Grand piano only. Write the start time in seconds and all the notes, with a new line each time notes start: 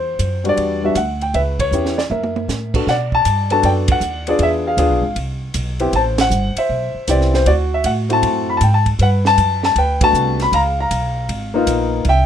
Already playing: C5
0.44 G3 B3 D4 F#4
0.49 D5
0.83 G3 B3 D4 F#4 E5
0.97 F#5
1.22 G5
1.35 B4 E5
1.60 C#5
1.73 B3 C#4 E4 G4
1.98 D5
2.11 A#4 E5
2.74 B3 D4 F#4 A4
2.89 D5 F#5
3.15 A5
3.50 B3 D4 F#4 A4 A5
3.65 D5 G5
3.92 F#5
4.28 B3 D4 F4 G#4 D5
4.42 G#4 E5
4.67 G#4 F5
4.78 B3 D4 F4 G#4
5.80 B3 C4 E4 G4
5.96 C5 A5
6.21 F#5
6.58 C5 E5
7.08 B3 C4 E4 G4 D5
7.35 C5
7.47 F#4 D5
7.74 E5
7.86 F#5
8.09 A3 C4 E4 F#4 A5
8.50 B5
8.57 A5
8.63 G5
8.74 A5
9.01 B4 F#5
9.27 A5
9.65 A5
9.78 B4 G5
10.02 A3 B3 D4 F#4 A5
10.42 B5
10.54 F5 A#5
10.80 F5 A#5
11.54 A#3 B3 D#4 F4
12.08 E5 G5